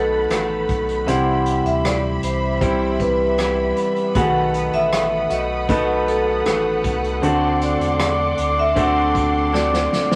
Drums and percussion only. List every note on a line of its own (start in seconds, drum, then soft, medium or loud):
0.30 cross-stick medium
0.30 closed hi-hat medium
0.69 kick medium
0.69 closed hi-hat medium
0.89 closed hi-hat soft
1.08 closed hi-hat medium
1.46 closed hi-hat medium
1.66 closed hi-hat soft
1.85 cross-stick loud
1.85 closed hi-hat medium
2.23 closed hi-hat medium
2.61 kick medium
2.61 closed hi-hat medium
3.00 kick medium
3.00 closed hi-hat medium
3.38 cross-stick medium
3.38 closed hi-hat medium
3.76 closed hi-hat medium
3.96 closed hi-hat soft
4.15 kick medium
4.15 closed hi-hat medium
4.54 closed hi-hat medium
4.73 closed hi-hat medium
4.93 cross-stick loud
4.93 closed hi-hat medium
5.30 closed hi-hat medium
5.69 kick medium
5.69 closed hi-hat medium
6.08 closed hi-hat medium
6.45 cross-stick medium
6.45 closed hi-hat medium
6.84 kick medium
6.84 closed hi-hat medium
7.04 closed hi-hat soft
7.23 closed hi-hat medium
7.61 closed hi-hat medium
7.81 closed hi-hat medium
8.00 cross-stick loud
8.00 closed hi-hat loud
8.37 closed hi-hat medium
8.76 kick medium
8.76 closed hi-hat medium
9.15 kick medium
9.15 closed hi-hat medium
9.54 snare medium
9.74 snare medium
9.93 snare medium
10.11 snare medium